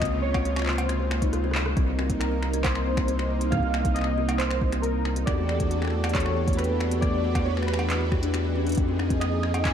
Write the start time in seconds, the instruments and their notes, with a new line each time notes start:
Already playing: analog synth bass C#2, analog synth pad C3 C#3 F4, synth keys D#5
0.02 kalimba C4, finger snap, kick, closed hi-hat
0.05 closed hi-hat
0.13 kalimba A#3
0.22 synth keys C#5
0.34 kalimba C4, finger snap, kick, cowbell
0.45 kalimba C4, closed hi-hat
0.56 kalimba C4, finger snap
0.59 finger snap
0.62 finger snap
0.65 kalimba A#3, synth keys C5, finger snap
0.67 finger snap, clap
0.70 finger snap
0.73 finger snap
0.76 finger snap, closed hi-hat, cowbell
0.89 kalimba C4, finger snap, closed hi-hat
1.00 kalimba C4
1.11 kalimba A#3, finger snap
1.22 kalimba D#4, kick, closed hi-hat
1.33 cross-stick, closed hi-hat
1.44 kalimba C4, cross-stick
1.51 kalimba C5, cross-stick, clap
1.59 cross-stick
1.66 cross-stick
1.77 analog synth bass C2, analog synth pad C3 A#3 D#4, kalimba C4, kick, closed hi-hat
1.88 kalimba C4
1.99 kalimba C4, finger snap
2.10 kalimba A#3, kick, closed hi-hat
2.19 synth keys A#4, finger snap, closed hi-hat
2.32 kalimba C4
2.42 kalimba C4, finger snap
2.53 kalimba C4, closed hi-hat
2.63 kalimba A#3, synth keys C5, kick, clap, closed hi-hat, cowbell
2.75 finger snap
2.86 kalimba C4
2.97 kalimba C4, finger snap, kick
3.08 kalimba C4, closed hi-hat
3.19 kalimba A#3, finger snap
3.41 kalimba C4, closed hi-hat
3.50 kalimba C4, synth keys F5, finger snap, kick, closed hi-hat
3.55 kick
3.57 kick
3.60 kalimba C4, kick
3.74 kalimba A#3, finger snap
3.85 kick, closed hi-hat
3.94 kalimba C4, synth keys D#5, finger snap, closed hi-hat
3.99 finger snap
4.01 finger snap
4.04 kalimba C4, finger snap
4.18 kalimba C4
4.29 kalimba A#3, finger snap, closed hi-hat, cowbell
4.38 synth keys C5, clap, closed hi-hat
4.51 kalimba C4, finger snap
4.61 kalimba C4, kick
4.72 kalimba C4, finger snap, closed hi-hat
4.82 kalimba A#3, synth keys A#4, closed hi-hat
5.05 kalimba C4, finger snap
5.16 kalimba C4, closed hi-hat
5.26 analog synth bass E2, analog synth pad E3 D4 F#4 G4 A4, kalimba B3, synth keys D5, finger snap, kick, closed hi-hat
5.38 kalimba A3
5.49 finger snap
5.60 kalimba B3, kick, closed hi-hat
5.71 kalimba B3, closed hi-hat
5.82 kalimba B3, finger snap
5.85 finger snap
5.87 finger snap
5.90 kalimba A3, finger snap
6.04 finger snap, closed hi-hat, cowbell
6.09 synth keys C#5, closed hi-hat
6.15 kalimba B3, kick, clap, closed hi-hat
6.20 closed hi-hat
6.26 kalimba B3, finger snap
6.37 kalimba B3
6.48 kalimba A3, kick, closed hi-hat
6.53 synth keys B4, closed hi-hat
6.59 finger snap, closed hi-hat
6.64 closed hi-hat
6.70 kalimba B3
6.81 kalimba B3, finger snap
6.91 kalimba B3, closed hi-hat
7.01 kalimba A3, analog synth pad B4, synth keys D5, finger snap, kick, closed hi-hat
7.24 kalimba B3
7.35 kalimba B3, finger snap, kick, closed hi-hat, cowbell
7.45 kalimba B3, synth keys C#5
7.57 kalimba A3, finger snap
7.63 synth keys B4, finger snap
7.68 finger snap
7.74 finger snap
7.79 kalimba B3, cowbell
7.90 kalimba B3, clap, closed hi-hat
8.01 kalimba B3
8.12 kalimba G4, finger snap, kick
8.23 kalimba D4, closed hi-hat
8.34 kalimba B3, finger snap, closed hi-hat
8.45 kalimba B4
8.56 kalimba C#4
8.67 kalimba D4, closed hi-hat
8.69 closed hi-hat
8.72 closed hi-hat
8.75 analog synth bass F2, analog synth pad D#4, synth texture D#5, kick, closed hi-hat
8.78 analog synth pad F3 G#4, closed hi-hat
8.88 kalimba C4
8.99 kalimba C4, finger snap
9.10 kalimba C4, kick, closed hi-hat
9.20 kalimba A#3, synth keys D#5, finger snap, closed hi-hat
9.43 kalimba C4, finger snap
9.54 kalimba C4, closed hi-hat, cowbell
9.64 kalimba C4, synth keys G#5, kick, clap, closed hi-hat